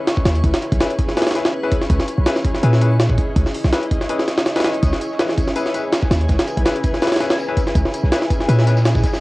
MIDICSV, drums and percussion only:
0, 0, Header, 1, 2, 480
1, 0, Start_track
1, 0, Tempo, 365854
1, 573, Time_signature, 4, 2, 24, 8
1, 12072, End_track
2, 0, Start_track
2, 0, Title_t, "Drums"
2, 94, Note_on_c, 9, 38, 119
2, 94, Note_on_c, 9, 42, 92
2, 223, Note_on_c, 9, 36, 98
2, 225, Note_off_c, 9, 38, 0
2, 225, Note_off_c, 9, 42, 0
2, 332, Note_on_c, 9, 38, 111
2, 332, Note_on_c, 9, 42, 85
2, 355, Note_off_c, 9, 36, 0
2, 463, Note_off_c, 9, 38, 0
2, 463, Note_off_c, 9, 42, 0
2, 463, Note_on_c, 9, 42, 41
2, 574, Note_on_c, 9, 36, 91
2, 575, Note_off_c, 9, 42, 0
2, 575, Note_on_c, 9, 42, 65
2, 705, Note_off_c, 9, 36, 0
2, 705, Note_off_c, 9, 42, 0
2, 705, Note_on_c, 9, 38, 108
2, 705, Note_on_c, 9, 42, 82
2, 815, Note_off_c, 9, 42, 0
2, 815, Note_on_c, 9, 42, 42
2, 836, Note_off_c, 9, 38, 0
2, 944, Note_on_c, 9, 36, 88
2, 946, Note_off_c, 9, 42, 0
2, 946, Note_on_c, 9, 42, 63
2, 1055, Note_off_c, 9, 42, 0
2, 1055, Note_on_c, 9, 38, 118
2, 1055, Note_on_c, 9, 42, 90
2, 1075, Note_off_c, 9, 36, 0
2, 1185, Note_off_c, 9, 42, 0
2, 1185, Note_on_c, 9, 42, 46
2, 1186, Note_off_c, 9, 38, 0
2, 1293, Note_off_c, 9, 42, 0
2, 1293, Note_on_c, 9, 36, 99
2, 1293, Note_on_c, 9, 42, 70
2, 1424, Note_on_c, 9, 38, 45
2, 1425, Note_off_c, 9, 36, 0
2, 1425, Note_off_c, 9, 42, 0
2, 1533, Note_off_c, 9, 38, 0
2, 1533, Note_on_c, 9, 38, 90
2, 1533, Note_on_c, 9, 42, 70
2, 1598, Note_off_c, 9, 38, 0
2, 1598, Note_off_c, 9, 42, 0
2, 1598, Note_on_c, 9, 38, 90
2, 1598, Note_on_c, 9, 42, 68
2, 1662, Note_off_c, 9, 38, 0
2, 1662, Note_off_c, 9, 42, 0
2, 1662, Note_on_c, 9, 38, 93
2, 1662, Note_on_c, 9, 42, 68
2, 1717, Note_off_c, 9, 38, 0
2, 1717, Note_off_c, 9, 42, 0
2, 1717, Note_on_c, 9, 38, 93
2, 1717, Note_on_c, 9, 42, 68
2, 1772, Note_off_c, 9, 38, 0
2, 1772, Note_off_c, 9, 42, 0
2, 1772, Note_on_c, 9, 38, 58
2, 1772, Note_on_c, 9, 42, 71
2, 1903, Note_off_c, 9, 38, 0
2, 1903, Note_on_c, 9, 38, 121
2, 1904, Note_off_c, 9, 42, 0
2, 2034, Note_off_c, 9, 38, 0
2, 2252, Note_on_c, 9, 42, 84
2, 2253, Note_on_c, 9, 36, 102
2, 2382, Note_on_c, 9, 38, 50
2, 2383, Note_off_c, 9, 42, 0
2, 2384, Note_off_c, 9, 36, 0
2, 2492, Note_on_c, 9, 42, 91
2, 2493, Note_on_c, 9, 36, 116
2, 2513, Note_off_c, 9, 38, 0
2, 2621, Note_on_c, 9, 38, 56
2, 2623, Note_off_c, 9, 42, 0
2, 2624, Note_off_c, 9, 36, 0
2, 2730, Note_on_c, 9, 42, 72
2, 2752, Note_off_c, 9, 38, 0
2, 2861, Note_off_c, 9, 42, 0
2, 2970, Note_on_c, 9, 38, 120
2, 2970, Note_on_c, 9, 42, 92
2, 3101, Note_off_c, 9, 38, 0
2, 3101, Note_off_c, 9, 42, 0
2, 3101, Note_on_c, 9, 38, 54
2, 3212, Note_on_c, 9, 42, 72
2, 3213, Note_on_c, 9, 36, 102
2, 3232, Note_off_c, 9, 38, 0
2, 3343, Note_on_c, 9, 38, 52
2, 3344, Note_off_c, 9, 36, 0
2, 3344, Note_off_c, 9, 42, 0
2, 3454, Note_on_c, 9, 42, 91
2, 3474, Note_off_c, 9, 38, 0
2, 3584, Note_on_c, 9, 38, 41
2, 3585, Note_off_c, 9, 42, 0
2, 3694, Note_on_c, 9, 42, 68
2, 3716, Note_off_c, 9, 38, 0
2, 3825, Note_off_c, 9, 42, 0
2, 3933, Note_on_c, 9, 38, 123
2, 3933, Note_on_c, 9, 42, 90
2, 4064, Note_on_c, 9, 36, 97
2, 4065, Note_off_c, 9, 38, 0
2, 4065, Note_off_c, 9, 42, 0
2, 4173, Note_on_c, 9, 42, 72
2, 4174, Note_off_c, 9, 36, 0
2, 4174, Note_on_c, 9, 36, 99
2, 4304, Note_off_c, 9, 42, 0
2, 4305, Note_off_c, 9, 36, 0
2, 4413, Note_on_c, 9, 42, 91
2, 4414, Note_on_c, 9, 36, 115
2, 4544, Note_off_c, 9, 42, 0
2, 4544, Note_on_c, 9, 38, 40
2, 4545, Note_off_c, 9, 36, 0
2, 4654, Note_on_c, 9, 46, 83
2, 4675, Note_off_c, 9, 38, 0
2, 4783, Note_on_c, 9, 38, 47
2, 4785, Note_off_c, 9, 46, 0
2, 4892, Note_off_c, 9, 38, 0
2, 4892, Note_on_c, 9, 38, 122
2, 4892, Note_on_c, 9, 42, 91
2, 5023, Note_off_c, 9, 38, 0
2, 5023, Note_off_c, 9, 42, 0
2, 5024, Note_on_c, 9, 42, 44
2, 5134, Note_on_c, 9, 36, 99
2, 5135, Note_off_c, 9, 42, 0
2, 5135, Note_on_c, 9, 42, 72
2, 5264, Note_on_c, 9, 38, 46
2, 5265, Note_off_c, 9, 36, 0
2, 5266, Note_off_c, 9, 42, 0
2, 5371, Note_on_c, 9, 42, 87
2, 5395, Note_off_c, 9, 38, 0
2, 5502, Note_off_c, 9, 42, 0
2, 5503, Note_on_c, 9, 38, 52
2, 5614, Note_off_c, 9, 38, 0
2, 5614, Note_on_c, 9, 38, 58
2, 5614, Note_on_c, 9, 42, 71
2, 5743, Note_off_c, 9, 38, 0
2, 5743, Note_on_c, 9, 38, 122
2, 5745, Note_off_c, 9, 42, 0
2, 5852, Note_off_c, 9, 38, 0
2, 5852, Note_on_c, 9, 38, 106
2, 5852, Note_on_c, 9, 42, 85
2, 5982, Note_off_c, 9, 38, 0
2, 5982, Note_off_c, 9, 42, 0
2, 5982, Note_on_c, 9, 38, 90
2, 5982, Note_on_c, 9, 42, 68
2, 6037, Note_off_c, 9, 38, 0
2, 6037, Note_off_c, 9, 42, 0
2, 6037, Note_on_c, 9, 38, 93
2, 6037, Note_on_c, 9, 42, 69
2, 6093, Note_off_c, 9, 38, 0
2, 6093, Note_off_c, 9, 42, 0
2, 6093, Note_on_c, 9, 38, 109
2, 6093, Note_on_c, 9, 42, 82
2, 6221, Note_off_c, 9, 42, 0
2, 6221, Note_on_c, 9, 42, 41
2, 6224, Note_off_c, 9, 38, 0
2, 6332, Note_off_c, 9, 42, 0
2, 6332, Note_on_c, 9, 42, 88
2, 6333, Note_on_c, 9, 36, 113
2, 6338, Note_on_c, 9, 54, 84
2, 6463, Note_off_c, 9, 42, 0
2, 6464, Note_off_c, 9, 36, 0
2, 6464, Note_on_c, 9, 38, 56
2, 6469, Note_off_c, 9, 54, 0
2, 6574, Note_on_c, 9, 42, 71
2, 6576, Note_on_c, 9, 54, 65
2, 6595, Note_off_c, 9, 38, 0
2, 6705, Note_off_c, 9, 42, 0
2, 6708, Note_off_c, 9, 54, 0
2, 6708, Note_on_c, 9, 38, 37
2, 6811, Note_off_c, 9, 38, 0
2, 6811, Note_on_c, 9, 38, 116
2, 6812, Note_off_c, 9, 38, 0
2, 6812, Note_on_c, 9, 38, 119
2, 6812, Note_on_c, 9, 42, 91
2, 6815, Note_on_c, 9, 54, 82
2, 6943, Note_off_c, 9, 38, 0
2, 6943, Note_off_c, 9, 42, 0
2, 6943, Note_on_c, 9, 38, 54
2, 6946, Note_off_c, 9, 54, 0
2, 7054, Note_on_c, 9, 36, 98
2, 7054, Note_on_c, 9, 42, 73
2, 7061, Note_on_c, 9, 54, 69
2, 7074, Note_off_c, 9, 38, 0
2, 7184, Note_on_c, 9, 38, 53
2, 7185, Note_off_c, 9, 36, 0
2, 7185, Note_off_c, 9, 42, 0
2, 7192, Note_off_c, 9, 54, 0
2, 7291, Note_on_c, 9, 54, 88
2, 7292, Note_on_c, 9, 42, 89
2, 7315, Note_off_c, 9, 38, 0
2, 7423, Note_off_c, 9, 42, 0
2, 7423, Note_off_c, 9, 54, 0
2, 7423, Note_on_c, 9, 38, 41
2, 7423, Note_on_c, 9, 42, 42
2, 7534, Note_off_c, 9, 42, 0
2, 7534, Note_on_c, 9, 42, 69
2, 7539, Note_on_c, 9, 54, 67
2, 7554, Note_off_c, 9, 38, 0
2, 7665, Note_off_c, 9, 42, 0
2, 7670, Note_off_c, 9, 54, 0
2, 7769, Note_on_c, 9, 38, 127
2, 7773, Note_off_c, 9, 38, 0
2, 7773, Note_on_c, 9, 38, 121
2, 7773, Note_on_c, 9, 42, 94
2, 7775, Note_on_c, 9, 54, 91
2, 7903, Note_off_c, 9, 38, 0
2, 7903, Note_on_c, 9, 38, 59
2, 7904, Note_off_c, 9, 42, 0
2, 7904, Note_on_c, 9, 36, 99
2, 7906, Note_off_c, 9, 54, 0
2, 8013, Note_off_c, 9, 38, 0
2, 8013, Note_on_c, 9, 38, 106
2, 8013, Note_on_c, 9, 54, 82
2, 8015, Note_off_c, 9, 38, 0
2, 8015, Note_on_c, 9, 38, 107
2, 8015, Note_on_c, 9, 42, 86
2, 8035, Note_off_c, 9, 36, 0
2, 8144, Note_off_c, 9, 42, 0
2, 8144, Note_off_c, 9, 54, 0
2, 8144, Note_on_c, 9, 42, 40
2, 8146, Note_off_c, 9, 38, 0
2, 8246, Note_on_c, 9, 54, 76
2, 8254, Note_on_c, 9, 36, 91
2, 8255, Note_off_c, 9, 42, 0
2, 8255, Note_on_c, 9, 42, 63
2, 8262, Note_on_c, 9, 38, 97
2, 8377, Note_off_c, 9, 54, 0
2, 8384, Note_off_c, 9, 38, 0
2, 8384, Note_off_c, 9, 42, 0
2, 8384, Note_on_c, 9, 38, 112
2, 8384, Note_on_c, 9, 42, 84
2, 8385, Note_off_c, 9, 36, 0
2, 8495, Note_off_c, 9, 42, 0
2, 8495, Note_on_c, 9, 42, 42
2, 8495, Note_on_c, 9, 54, 71
2, 8516, Note_off_c, 9, 38, 0
2, 8624, Note_on_c, 9, 36, 89
2, 8625, Note_off_c, 9, 42, 0
2, 8625, Note_on_c, 9, 42, 65
2, 8626, Note_off_c, 9, 54, 0
2, 8730, Note_on_c, 9, 38, 127
2, 8734, Note_on_c, 9, 54, 87
2, 8735, Note_off_c, 9, 38, 0
2, 8735, Note_off_c, 9, 42, 0
2, 8735, Note_on_c, 9, 38, 120
2, 8735, Note_on_c, 9, 42, 90
2, 8755, Note_off_c, 9, 36, 0
2, 8865, Note_off_c, 9, 54, 0
2, 8866, Note_off_c, 9, 38, 0
2, 8866, Note_off_c, 9, 42, 0
2, 8866, Note_on_c, 9, 42, 44
2, 8966, Note_on_c, 9, 54, 74
2, 8974, Note_off_c, 9, 42, 0
2, 8974, Note_on_c, 9, 36, 101
2, 8974, Note_on_c, 9, 42, 71
2, 9097, Note_off_c, 9, 54, 0
2, 9105, Note_off_c, 9, 36, 0
2, 9105, Note_off_c, 9, 42, 0
2, 9106, Note_on_c, 9, 38, 45
2, 9206, Note_on_c, 9, 54, 76
2, 9213, Note_off_c, 9, 38, 0
2, 9213, Note_on_c, 9, 38, 90
2, 9213, Note_on_c, 9, 42, 70
2, 9279, Note_off_c, 9, 38, 0
2, 9279, Note_off_c, 9, 42, 0
2, 9279, Note_on_c, 9, 38, 92
2, 9279, Note_on_c, 9, 42, 70
2, 9337, Note_off_c, 9, 54, 0
2, 9344, Note_off_c, 9, 38, 0
2, 9344, Note_off_c, 9, 42, 0
2, 9344, Note_on_c, 9, 38, 92
2, 9344, Note_on_c, 9, 42, 71
2, 9399, Note_off_c, 9, 38, 0
2, 9399, Note_off_c, 9, 42, 0
2, 9399, Note_on_c, 9, 38, 94
2, 9399, Note_on_c, 9, 42, 67
2, 9448, Note_on_c, 9, 54, 63
2, 9454, Note_off_c, 9, 38, 0
2, 9454, Note_off_c, 9, 42, 0
2, 9454, Note_on_c, 9, 38, 58
2, 9454, Note_on_c, 9, 42, 70
2, 9579, Note_off_c, 9, 54, 0
2, 9584, Note_off_c, 9, 38, 0
2, 9584, Note_on_c, 9, 38, 121
2, 9585, Note_off_c, 9, 42, 0
2, 9687, Note_off_c, 9, 38, 0
2, 9687, Note_on_c, 9, 38, 118
2, 9701, Note_on_c, 9, 54, 92
2, 9818, Note_off_c, 9, 38, 0
2, 9832, Note_off_c, 9, 54, 0
2, 9934, Note_on_c, 9, 36, 107
2, 9934, Note_on_c, 9, 42, 83
2, 9937, Note_on_c, 9, 54, 72
2, 10064, Note_on_c, 9, 38, 52
2, 10065, Note_off_c, 9, 36, 0
2, 10065, Note_off_c, 9, 42, 0
2, 10067, Note_off_c, 9, 38, 0
2, 10067, Note_on_c, 9, 38, 60
2, 10068, Note_off_c, 9, 54, 0
2, 10174, Note_on_c, 9, 36, 115
2, 10174, Note_on_c, 9, 42, 90
2, 10176, Note_on_c, 9, 54, 78
2, 10198, Note_off_c, 9, 38, 0
2, 10305, Note_off_c, 9, 36, 0
2, 10305, Note_off_c, 9, 42, 0
2, 10305, Note_on_c, 9, 38, 58
2, 10307, Note_off_c, 9, 54, 0
2, 10416, Note_on_c, 9, 42, 74
2, 10420, Note_on_c, 9, 54, 67
2, 10436, Note_off_c, 9, 38, 0
2, 10546, Note_on_c, 9, 38, 40
2, 10547, Note_off_c, 9, 42, 0
2, 10551, Note_off_c, 9, 54, 0
2, 10654, Note_off_c, 9, 38, 0
2, 10654, Note_on_c, 9, 38, 121
2, 10654, Note_on_c, 9, 42, 92
2, 10658, Note_on_c, 9, 54, 82
2, 10662, Note_off_c, 9, 38, 0
2, 10662, Note_on_c, 9, 38, 124
2, 10785, Note_off_c, 9, 38, 0
2, 10785, Note_off_c, 9, 42, 0
2, 10785, Note_on_c, 9, 38, 53
2, 10789, Note_off_c, 9, 54, 0
2, 10895, Note_on_c, 9, 36, 101
2, 10896, Note_on_c, 9, 42, 72
2, 10898, Note_on_c, 9, 54, 73
2, 10916, Note_off_c, 9, 38, 0
2, 11026, Note_off_c, 9, 36, 0
2, 11026, Note_on_c, 9, 38, 51
2, 11027, Note_off_c, 9, 42, 0
2, 11029, Note_off_c, 9, 54, 0
2, 11135, Note_on_c, 9, 42, 91
2, 11138, Note_on_c, 9, 54, 83
2, 11157, Note_off_c, 9, 38, 0
2, 11263, Note_off_c, 9, 42, 0
2, 11263, Note_on_c, 9, 42, 47
2, 11266, Note_on_c, 9, 38, 42
2, 11270, Note_off_c, 9, 54, 0
2, 11369, Note_off_c, 9, 38, 0
2, 11369, Note_on_c, 9, 38, 106
2, 11373, Note_on_c, 9, 54, 84
2, 11374, Note_off_c, 9, 42, 0
2, 11374, Note_on_c, 9, 42, 71
2, 11500, Note_off_c, 9, 38, 0
2, 11502, Note_off_c, 9, 54, 0
2, 11502, Note_on_c, 9, 54, 84
2, 11503, Note_on_c, 9, 38, 109
2, 11506, Note_off_c, 9, 42, 0
2, 11612, Note_off_c, 9, 38, 0
2, 11612, Note_on_c, 9, 38, 100
2, 11613, Note_off_c, 9, 54, 0
2, 11613, Note_on_c, 9, 54, 80
2, 11615, Note_off_c, 9, 38, 0
2, 11615, Note_on_c, 9, 38, 119
2, 11615, Note_on_c, 9, 42, 93
2, 11744, Note_off_c, 9, 54, 0
2, 11744, Note_on_c, 9, 36, 102
2, 11746, Note_off_c, 9, 38, 0
2, 11746, Note_off_c, 9, 42, 0
2, 11747, Note_on_c, 9, 38, 102
2, 11753, Note_on_c, 9, 54, 83
2, 11850, Note_off_c, 9, 54, 0
2, 11850, Note_on_c, 9, 54, 81
2, 11853, Note_on_c, 9, 42, 73
2, 11854, Note_off_c, 9, 36, 0
2, 11854, Note_on_c, 9, 36, 99
2, 11857, Note_off_c, 9, 38, 0
2, 11857, Note_on_c, 9, 38, 111
2, 11981, Note_off_c, 9, 54, 0
2, 11983, Note_off_c, 9, 38, 0
2, 11983, Note_on_c, 9, 38, 103
2, 11984, Note_off_c, 9, 38, 0
2, 11984, Note_off_c, 9, 42, 0
2, 11984, Note_on_c, 9, 38, 42
2, 11985, Note_off_c, 9, 36, 0
2, 11986, Note_on_c, 9, 54, 87
2, 12072, Note_off_c, 9, 38, 0
2, 12072, Note_off_c, 9, 54, 0
2, 12072, End_track
0, 0, End_of_file